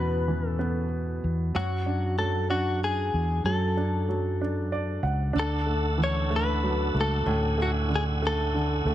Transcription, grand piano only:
0.00 1.51 B2 medium
0.00 0.28 E3 soft
0.00 0.59 B3 soft
0.28 1.51 E3 soft
0.59 1.51 B3 soft
1.55 2.17 F#3 medium
1.86 2.48 D4 soft
2.18 3.41 F#3 soft
2.50 3.73 D4 soft
3.45 4.07 F#3 soft
3.77 4.40 D4 soft
4.09 5.32 F#3 soft
4.41 5.32 D4 soft
4.72 5.02 D5 medium
5.03 5.33 F#5 soft
5.33 7.21 D4 medium
5.66 6.29 A3 soft
5.98 7.21 E3 soft
6.30 6.93 A3 soft
6.63 7.86 F#3 soft
6.95 7.56 A3 soft
7.26 8.95 A2 medium
7.58 8.21 A3 soft
7.89 8.53 D3 soft
8.22 8.85 A3 soft
8.54 8.95 D3 soft
8.86 8.95 A3 soft

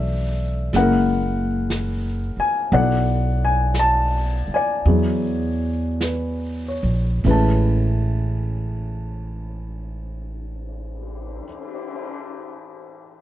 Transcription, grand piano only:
0.00 0.71 E3 soft
0.00 0.73 A3 soft
0.00 0.75 D4 soft
0.00 0.76 F#4 soft
0.00 0.74 A4 soft
0.00 0.74 D5 medium
0.00 0.78 E5 medium
0.74 2.71 G#3 soft
0.74 2.71 A#3 soft
0.74 2.72 C#4 soft
0.74 2.71 E4 soft
0.74 2.69 A#4 medium
0.74 2.35 F#5 medium
2.40 2.73 G#5 medium
2.71 4.85 F#3 soft
2.71 4.85 B3 soft
2.71 4.85 E4 soft
2.71 4.86 A4 soft
2.71 4.54 D5 medium
2.71 3.37 F#5 medium
3.45 3.78 G#5 medium
3.79 4.52 A5 medium
4.54 6.82 D5 medium
4.54 6.82 G#5 medium
4.86 7.25 F#3 soft
4.86 7.25 B3 soft
4.86 7.26 E4 soft
4.86 7.26 G#4 soft
6.03 7.00 B4 soft
6.68 7.56 C#5 soft
7.24 11.44 A2 soft
7.24 11.45 E3 soft
7.24 11.45 G#3 soft
7.24 11.46 C#4 soft
7.24 11.46 B4 medium
7.31 11.46 A5 medium

